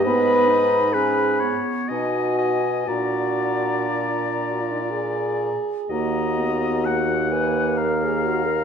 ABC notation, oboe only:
X:1
M:3/4
L:1/8
Q:1/4=63
K:Ebm
V:1 name="Oboe"
e2 c d e e | =d4- d z | e2 g2 f2 |]